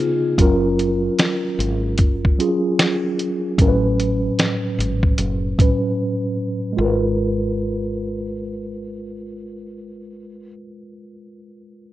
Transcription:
0.00 0.40 C#3 medium
0.00 0.39 B3 medium
0.00 0.40 D#4 medium
0.00 0.36 F4 medium
0.00 0.39 G#4 medium
0.38 1.08 F#1 medium
0.38 1.45 F#3 medium
0.38 1.45 C#4 medium
0.38 1.46 F4 medium
0.38 1.46 A#4 medium
0.38 kick medium
0.38 closed hi-hat medium
0.79 closed hi-hat medium
1.19 snare loud
1.19 closed hi-hat medium
1.59 1.99 G#1 medium
1.59 closed hi-hat medium
1.98 2.34 F#1 medium
1.98 kick medium
1.98 closed hi-hat medium
2.25 kick medium
2.38 3.15 F#3 medium
2.38 3.16 C#4 medium
2.38 3.16 F4 medium
2.38 3.17 G#4 medium
2.38 closed hi-hat medium
2.79 snare loud
2.79 closed hi-hat medium
3.19 closed hi-hat medium
3.58 4.28 A1 medium
3.58 4.65 A2 medium
3.58 4.65 F#3 medium
3.58 4.66 C#4 medium
3.58 3.68 A#4 medium
3.58 kick medium
3.58 closed hi-hat medium
3.68 4.70 B4 medium
4.00 closed hi-hat medium
4.39 snare loud
4.39 closed hi-hat medium
4.79 5.13 G#1 medium
4.79 closed hi-hat medium
5.03 kick medium
5.18 5.53 F#1 medium
5.18 closed hi-hat medium
5.58 6.35 A2 medium
5.58 6.36 F#3 medium
5.58 6.37 C#4 medium
5.58 6.37 B4 medium
5.58 kick loud
5.58 closed hi-hat medium
6.73 10.49 G#3 medium
6.77 10.54 G#1 medium
6.77 10.53 F4 medium
6.77 10.56 A#4 medium
6.85 10.61 B4 medium

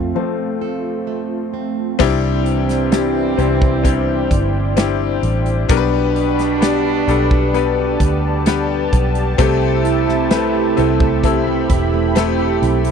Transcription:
0.00 0.12 F2 medium
0.00 2.00 F2 medium
0.00 0.14 F3 soft
0.00 0.14 A3 soft
0.00 1.96 A3 medium
0.00 0.15 C4 medium
0.00 1.53 C4 medium
0.00 1.96 C4 medium
0.00 1.96 F4 medium
0.00 0.60 A4 medium
0.00 1.04 F5 medium
0.15 0.58 F3 soft
0.15 2.10 F3 medium
0.15 0.58 A3 soft
0.15 0.58 C4 soft
0.61 2.09 A4 medium
1.07 2.09 A3 medium
1.54 2.59 C4 medium
1.99 3.35 C2 loud
1.99 5.19 G2 medium
1.99 3.34 C3 medium
1.99 5.19 E3 medium
1.99 2.87 G3 loud
1.99 2.87 C4 medium
1.99 5.19 C4 loud
1.99 2.88 D4 loud
1.99 5.66 E4 medium
1.99 2.88 E4 loud
1.99 2.88 G4 loud
1.99 5.66 C5 medium
1.99 5.66 D5 medium
1.99 5.66 G5 medium
1.99 kick loud
1.99 crash loud
2.46 closed hi-hat medium
2.69 snare soft
2.69 closed hi-hat medium
2.92 3.36 G3 medium
2.92 3.36 C4 medium
2.92 3.36 D4 medium
2.92 3.37 E4 medium
2.92 3.37 G4 loud
2.92 snare loud
2.92 closed hi-hat medium
3.37 4.27 C2 medium
3.37 3.82 G3 medium
3.37 3.82 C4 medium
3.37 3.82 D4 medium
3.37 3.83 E4 medium
3.37 3.83 G4 medium
3.37 closed hi-hat medium
3.62 kick medium
3.83 4.72 G3 medium
3.83 4.72 C4 medium
3.83 4.72 D4 medium
3.83 4.72 E4 medium
3.83 4.73 G4 medium
3.83 kick medium
3.83 closed hi-hat medium
4.31 5.19 G1 medium
4.31 kick medium
4.31 closed hi-hat medium
4.76 5.64 G3 medium
4.76 5.65 C4 medium
4.76 5.65 D4 medium
4.76 5.65 E4 medium
4.76 5.65 G4 loud
4.76 snare loud
4.76 closed hi-hat loud
5.23 5.66 A1 loud
5.23 closed hi-hat medium
5.46 closed hi-hat medium
5.69 7.04 B1 loud
5.69 8.89 B2 medium
5.69 7.04 B2 medium
5.69 6.57 G3 loud
5.69 8.88 G3 medium
5.69 6.57 B3 loud
5.69 8.89 D4 loud
5.69 6.57 D4 loud
5.69 12.91 G4 medium
5.69 6.57 G4 loud
5.69 5.76 A#4 loud
5.69 9.35 B4 medium
5.69 9.35 D5 medium
5.69 7.52 B5 medium
5.69 kick loud
5.69 closed hi-hat medium
5.77 6.61 B4 loud
6.16 closed hi-hat medium
6.39 snare soft
6.39 closed hi-hat medium
6.61 7.05 G3 medium
6.61 7.05 B3 medium
6.61 7.06 D4 medium
6.61 7.06 G4 medium
6.61 7.06 D5 loud
6.61 snare loud
6.61 closed hi-hat medium
7.07 7.96 B1 medium
7.07 7.52 G3 medium
7.07 7.52 B3 medium
7.07 7.52 D4 medium
7.07 7.52 G4 medium
7.07 7.52 A4 medium
7.07 closed hi-hat medium
7.31 kick loud
7.53 8.42 G3 medium
7.53 8.42 B3 medium
7.53 8.42 D4 medium
7.53 8.42 G4 medium
7.53 8.42 B4 medium
7.53 11.19 A5 medium
7.53 closed hi-hat medium
8.00 8.89 D2 medium
8.00 kick medium
8.00 closed hi-hat medium
8.46 9.34 G3 medium
8.46 9.34 B3 medium
8.46 9.34 D4 medium
8.46 9.35 G4 medium
8.46 9.35 B4 loud
8.46 snare loud
8.46 closed hi-hat loud
8.93 9.36 B1 loud
8.93 kick loud
8.93 closed hi-hat medium
9.15 closed hi-hat medium
9.38 10.73 C2 loud
9.38 11.23 C3 medium
9.38 10.73 C3 medium
9.38 12.58 C3 loud
9.38 10.26 A3 loud
9.38 12.58 A3 medium
9.38 10.26 C4 loud
9.38 12.91 C4 medium
9.38 10.27 E4 loud
9.38 12.58 E4 loud
9.38 10.54 G4 medium
9.38 10.27 G4 loud
9.38 10.27 A4 loud
9.38 12.91 E5 medium
9.38 kick loud
9.38 closed hi-hat medium
9.61 10.06 A3 medium
9.85 10.30 E4 medium
9.85 closed hi-hat medium
10.07 11.00 A3 medium
10.07 snare soft
10.30 10.75 A3 medium
10.30 10.75 C4 medium
10.30 10.75 E4 medium
10.30 10.77 E4 medium
10.30 10.75 G4 medium
10.30 10.75 B4 loud
10.30 snare loud
10.30 closed hi-hat medium
10.55 11.24 G4 medium
10.77 11.66 C2 medium
10.77 11.21 A3 medium
10.77 11.21 C4 medium
10.77 11.21 E4 medium
10.77 11.69 E4 medium
10.77 11.22 G4 medium
10.77 11.22 A4 medium
10.77 closed hi-hat medium
11.00 11.46 A3 medium
11.00 kick loud
11.23 12.11 A3 medium
11.23 12.11 C4 medium
11.23 12.11 E4 medium
11.23 12.39 G4 medium
11.23 12.12 G4 medium
11.23 12.12 A4 medium
11.23 12.91 B5 medium
11.23 kick medium
11.23 closed hi-hat medium
11.47 11.93 A3 medium
11.70 12.58 E1 medium
11.70 12.15 E4 medium
11.70 kick medium
11.70 closed hi-hat medium
11.94 12.84 A3 medium
12.15 12.91 A3 medium
12.15 12.91 C4 medium
12.15 12.91 E4 medium
12.15 12.61 E4 medium
12.15 12.91 G4 medium
12.15 12.91 A4 loud
12.15 snare loud
12.15 closed hi-hat loud
12.39 12.91 G4 medium
12.62 12.91 B1 loud
12.62 12.91 E4 medium
12.62 closed hi-hat medium
12.85 12.91 A3 medium
12.85 closed hi-hat medium

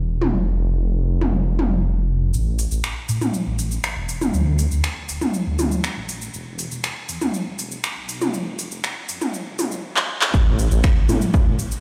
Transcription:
0.00 0.31 E1 medium
0.21 mid tom medium
0.34 2.31 F1 medium
1.21 mid tom medium
1.59 mid tom medium
2.34 2.66 A1 medium
2.34 shaker medium
2.59 open hi-hat loud
2.59 shaker medium
2.71 2.81 A1 medium
2.71 shaker medium
2.84 finger snap loud
2.84 shaker medium
3.09 3.18 A2 loud
3.09 open hi-hat loud
3.09 shaker medium
3.21 mid tom medium
3.21 shaker medium
3.34 shaker medium
3.47 3.79 A1 medium
3.59 open hi-hat medium
3.59 shaker medium
3.71 shaker medium
3.84 finger snap loud
3.84 shaker medium
3.96 4.29 E1 medium
4.09 open hi-hat loud
4.09 shaker medium
4.21 mid tom medium
4.21 shaker medium
4.34 4.66 D2 medium
4.34 shaker medium
4.59 open hi-hat loud
4.59 shaker medium
4.71 4.81 D2 medium
4.71 shaker medium
4.84 finger snap loud
4.84 shaker medium
5.09 5.18 D1 loud
5.09 open hi-hat loud
5.09 shaker medium
5.21 mid tom medium
5.21 shaker medium
5.34 shaker medium
5.46 5.79 D2 medium
5.59 open hi-hat loud
5.59 mid tom medium
5.59 shaker medium
5.71 shaker medium
5.84 finger snap loud
5.84 shaker medium
5.96 6.29 A1 medium
6.09 open hi-hat loud
6.09 shaker medium
6.21 shaker medium
6.34 6.66 E1 loud
6.34 shaker medium
6.59 open hi-hat loud
6.59 shaker medium
6.71 6.81 E1 medium
6.71 shaker medium
6.84 finger snap loud
6.84 shaker medium
7.09 7.18 E2 loud
7.09 open hi-hat loud
7.09 shaker medium
7.21 mid tom medium
7.21 shaker medium
7.34 shaker medium
7.46 7.79 E1 loud
7.59 open hi-hat loud
7.59 shaker medium
7.71 shaker medium
7.84 finger snap loud
7.84 shaker medium
7.96 8.29 B1 medium
8.09 open hi-hat loud
8.09 shaker medium
8.21 mid tom medium
8.21 shaker medium
8.34 8.66 F1 loud
8.34 shaker medium
8.59 open hi-hat loud
8.59 shaker medium
8.71 8.81 F1 medium
8.71 shaker medium
8.84 finger snap loud
8.84 shaker medium
9.09 9.18 F2 loud
9.09 open hi-hat loud
9.09 shaker medium
9.21 mid tom medium
9.21 shaker medium
9.34 shaker medium
9.46 9.79 F1 loud
9.59 open hi-hat loud
9.59 mid tom loud
9.59 shaker medium
9.71 shaker medium
9.96 clap medium
10.22 clap loud
10.34 10.66 A1 loud
10.34 kick loud
10.34 shaker medium
10.59 open hi-hat loud
10.59 shaker medium
10.71 10.81 A1 medium
10.71 shaker medium
10.84 finger snap loud
10.84 kick loud
10.84 shaker medium
11.09 11.18 A2 loud
11.09 open hi-hat medium
11.09 mid tom medium
11.09 shaker medium
11.22 shaker medium
11.34 kick loud
11.34 shaker medium
11.47 11.56 A1 medium
11.59 open hi-hat loud
11.59 shaker medium
11.72 shaker medium

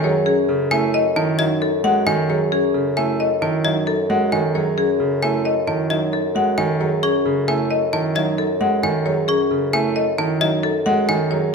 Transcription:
0.00 11.55 F#2 medium
0.00 0.10 D#3 medium
0.00 0.33 F#3 medium
0.00 0.33 G#4 loud
0.00 0.10 A4 loud
0.00 0.10 G#5 loud
0.04 0.33 C#5 medium
0.26 0.55 C#4 medium
0.26 0.55 G#4 medium
0.49 0.78 C#3 medium
0.49 0.78 A4 medium
0.71 1.01 A3 medium
0.71 1.01 E4 loud
0.71 1.01 E5 medium
0.71 1.01 G#5 loud
0.94 1.23 A4 medium
0.94 1.23 D#5 loud
1.16 1.46 D#3 medium
1.16 1.46 E4 medium
1.16 1.46 A5 medium
1.39 1.68 F#3 medium
1.39 1.68 D#4 loud
1.39 1.68 D#5 loud
1.39 1.68 E5 medium
1.62 1.91 A4 medium
1.62 1.91 A4 loud
1.84 2.13 G#3 loud
1.84 2.13 F#4 medium
1.84 2.13 F#5 loud
2.07 2.36 D#3 medium
2.07 2.36 A4 medium
2.07 2.36 G#5 loud
2.29 2.59 F#3 medium
2.29 2.58 G#4 loud
2.29 2.59 C#5 medium
2.52 2.81 C#4 medium
2.52 2.81 G#4 loud
2.74 3.04 C#3 medium
2.74 3.04 A4 medium
2.97 3.26 A3 medium
2.97 3.26 E4 loud
2.97 3.26 E5 medium
2.97 3.26 G#5 medium
3.19 3.49 A4 medium
3.19 3.49 D#5 loud
3.42 3.71 D#3 medium
3.42 3.71 E4 medium
3.42 3.71 A5 medium
3.64 3.94 F#3 medium
3.64 3.94 D#4 medium
3.64 3.94 D#5 medium
3.64 3.94 E5 medium
3.87 4.16 A4 medium
4.10 4.39 G#3 medium
4.10 4.39 F#4 medium
4.10 4.39 F#5 medium
4.32 4.62 D#3 medium
4.32 4.61 A4 medium
4.32 4.62 G#5 medium
4.55 4.84 F#3 medium
4.55 4.84 G#4 medium
4.55 4.84 C#5 medium
4.77 5.07 C#4 medium
4.77 5.07 G#4 medium
5.00 5.29 C#3 medium
5.00 5.29 A4 medium
5.22 5.52 A3 medium
5.22 5.52 E4 loud
5.22 5.52 E5 medium
5.22 5.52 G#5 medium
5.45 5.74 A4 medium
5.45 5.74 D#5 medium
5.67 5.97 D#3 medium
5.67 5.97 E4 medium
5.67 5.97 A5 medium
5.90 6.20 F#3 medium
5.90 6.19 D#4 medium
5.90 6.19 D#5 medium
5.90 6.20 E5 medium
6.12 6.42 A4 medium
6.35 6.65 G#3 medium
6.35 6.65 F#4 medium
6.35 6.65 F#5 medium
6.58 6.87 D#3 medium
6.58 6.87 A4 medium
6.58 6.87 G#5 medium
6.80 7.10 F#3 medium
6.80 7.10 G#4 medium
6.80 7.10 C#5 medium
7.03 7.32 C#4 medium
7.03 7.32 G#4 loud
7.03 7.32 C#6 medium
7.26 7.55 C#3 medium
7.26 7.55 A4 medium
7.48 7.77 A3 medium
7.48 7.77 E4 medium
7.48 7.77 E5 medium
7.48 7.77 G#5 medium
7.71 8.00 A4 medium
7.71 8.00 D#5 loud
7.93 8.22 D#3 medium
7.93 8.22 E4 medium
7.93 8.22 A5 medium
8.15 8.45 F#3 medium
8.15 8.45 D#4 medium
8.15 8.45 D#5 medium
8.15 8.45 E5 medium
8.38 8.67 A4 medium
8.38 8.68 A4 medium
8.61 8.90 G#3 medium
8.61 8.90 F#4 medium
8.61 8.90 F#5 medium
8.83 9.13 D#3 medium
8.83 9.13 A4 medium
8.83 9.13 G#5 medium
9.06 9.35 F#3 medium
9.06 9.35 G#4 loud
9.06 9.35 C#5 medium
9.28 9.58 C#4 medium
9.28 9.58 G#4 medium
9.28 9.58 C#6 medium
9.51 9.80 C#3 medium
9.51 9.80 A4 medium
9.73 10.03 A3 medium
9.73 10.03 E4 loud
9.73 10.03 E5 medium
9.73 10.03 G#5 loud
9.96 10.25 A4 medium
9.96 10.25 D#5 medium
10.18 10.48 D#3 medium
10.18 10.48 E4 medium
10.18 10.48 A5 medium
10.41 10.70 F#3 medium
10.41 10.70 D#4 medium
10.41 10.70 D#5 loud
10.41 10.70 E5 medium
10.63 10.93 A4 loud
10.63 10.93 A4 medium
10.86 11.16 G#3 loud
10.86 11.16 F#4 medium
10.86 11.15 F#5 loud
11.09 11.38 D#3 medium
11.09 11.38 A4 medium
11.09 11.38 G#5 medium
11.31 11.55 F#3 medium
11.31 11.55 G#4 medium
11.31 11.55 C#5 medium

